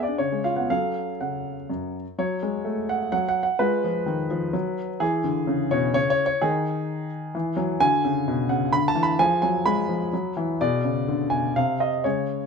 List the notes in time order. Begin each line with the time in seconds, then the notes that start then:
Already playing: G#4
0.03 D5
0.08 D4
0.18 C#3 C#5
0.32 G#3
0.44 F4 F5
0.56 B3 F#5
0.70 F#3 C#4 A4 F5
1.21 C#3 F#5
1.70 F#2
2.19 F#3 F#4 C#5
2.43 G#3
2.65 A3
2.89 F#5
3.12 F#3 F#5
3.29 F#5
3.43 F#5
3.59 G#3 F4 B4
3.84 F3
4.06 D#3
4.30 F3
4.53 F#3
5.00 E3 E4 G#4
5.24 D3
5.47 C#3
5.71 B2 C#5
5.94 C#3 C#5
6.10 C#5
6.26 C#5
6.41 D#3 D#4 G#4
7.35 E3
7.57 F#3
7.80 D3 F#4 G#5
8.05 C#3
8.28 B2
8.49 C#3 F#5
8.73 D3 B5
8.88 A5
8.95 E3
9.03 B5
9.19 F3 G#4 G#5
9.42 F#3 G#5
9.66 G#3 B5
9.89 F3
10.13 F#3
10.37 E3
10.61 B2 G#4 D5
10.84 C#3
11.08 D3
11.30 B2 G#5
11.56 C3 F5
11.80 D#5
12.04 C#3 G#3 G#4 C#5